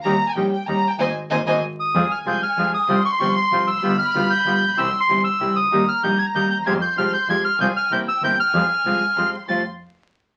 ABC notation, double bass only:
X:1
M:3/4
L:1/8
Q:1/4=191
K:Ab
V:1 name="Double bass" clef=bass
E,, z B,,, z E,, z | A,,, z A,,, A,,, z2 | [K:Fm] F,, z C,, z F,, z | C,, z G,,, z C,, F,,, |
G,,, z =D,, z G,,, B,,, | C,, z G,,, z C,, D,, | E,, z B,,, z E,, E,, | F,, z C,, z F,, z |
C,, z C,, z G,,, z | F,, z C,, z F,, z | F,, z4 z |]